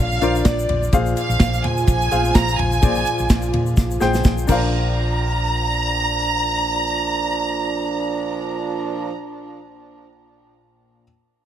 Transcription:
Already playing: A#2 D3 D4 F4 A#4 C5 C#5 D5
0.00 A#1 F5
0.12 shaker
0.22 A#1 D4 F4 A#4 C5 D5, ride, shaker
0.35 shaker
0.45 A#1 D5, kick, snare, clap, ride, shaker
0.59 shaker
0.69 A#1, floor tom, ride
0.83 shaker
0.93 A#1 A#2 F3 F4 G#4 C5 F5, kick, ride, shaker
1.06 shaker
1.17 F5, ride, shaker
1.29 A#1, shaker
1.40 A#1, kick, snare, clap, ride, shaker
1.54 shaker
1.64 A#2 G#5, floor tom, ride
1.77 shaker
1.88 A#1 G#5, kick, ride, shaker
2.01 shaker
2.11 A#1 G#4 C5 F5, ride, shaker
2.25 shaker
2.35 A#1 A#5, kick, snare, clap, ride, shaker
2.48 shaker
2.58 A#1 G#5, floor tom, ride
2.72 shaker
2.82 A#1 A#2 G#4 C5 D5, kick, ride, shaker
2.95 shaker
3.05 ride, shaker
3.19 A#1, shaker
3.29 A#1, kick, snare, clap, ride, shaker
3.42 shaker
3.53 A#2, floor tom, ride
3.66 shaker
3.77 A#1, kick, snare, shaker
3.91 shaker
4.00 A#1 G#4 C5 G5, snare, shaker
4.14 snare, shaker
4.24 A#1, kick, snare, shaker
4.38 shaker
4.47 A#1 A#2 F3 D4 A#4 C5 A#5, kick, crash, shaker
4.52 F5

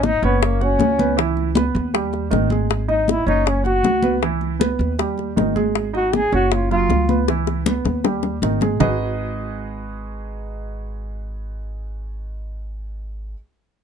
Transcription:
Already playing: G#1 D#4 D#5
0.03 D#4, high bongo, high conga
0.22 F#1 B3 C#4 C#5, high bongo, high conga
0.42 A#3, high bongo, high conga
0.60 C#4 F#4 F#5, high bongo, high conga
0.79 C#2, high bongo, low bongo, high conga
0.98 B3 B4, high bongo, high conga
1.17 E3 E4, high bongo, high conga
1.37 high conga
1.55 B3 B4, high bongo, high conga
1.75 D#2, high bongo, high conga
1.94 G3 G4, high bongo, high conga
2.13 high bongo, high conga
2.31 G#1 D#3 D#4, high bongo, low bongo, high conga
2.50 G#3 G#4, high bongo, high conga
2.70 high bongo, high conga
2.88 D#4 D#5, high conga
3.08 E4, high bongo, high conga
3.26 F#1 C#4 D#4 C#5, high bongo, high conga
3.46 C#4, high bongo, high conga
3.64 F#4 F#5, high bongo, high conga
3.84 C#2, high bongo, low bongo, high conga
4.03 B3 B4, high bongo, high conga
4.22 E3 E4, high bongo, high conga
4.41 high conga
4.59 B3 B4, high bongo, high conga
4.79 D#2, high bongo, high conga
4.99 G3 G4, high bongo, high conga
5.18 high bongo, high conga
5.36 G#1 D#3 D#4, high bongo, low bongo, high conga
5.56 G#3 G#4, high bongo, high conga
5.75 high bongo, high conga
5.93 D#4 F#4 D#5, high conga
6.13 G#4, high bongo, high conga
6.32 F#1 C#4 F#4 C#5, high bongo, high conga
6.52 F4, high bongo, high conga
6.71 F#3 F4 F5, high bongo, high conga
6.89 C#2, high bongo, low bongo, high conga
7.09 B3 B4, high bongo, high conga
7.28 E3 E4, high bongo, high conga
7.47 high bongo, high conga
7.66 B3 B4, low bongo, high conga
7.85 D#2, low bongo, high conga
8.04 G3 G4, low bongo, high conga
8.23 low bongo, high conga
8.42 G#1 D#3 D#4, low bongo, high conga
8.61 G#3 G#4, low bongo, high conga
8.80 G#1 G#3 D#4 F#4 G#4 B4 D#5, low bongo, low conga

